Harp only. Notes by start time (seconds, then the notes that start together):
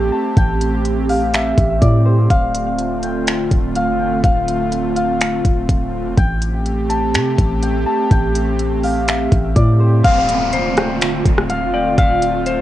Already playing: G5 A5
0.12 A5
0.37 G5
1.09 F5
1.34 E5
1.81 D5
2.06 C5
2.30 F5
3.03 G5
3.76 F5
3.99 G5
4.24 F5
4.96 F5
6.17 G5
6.89 A5
7.62 G5
7.86 A5
8.11 G5
8.84 F5
9.08 E5
9.56 D5
9.80 C5
10.04 F5
10.77 G5
11.50 F5
11.73 G5
11.98 F5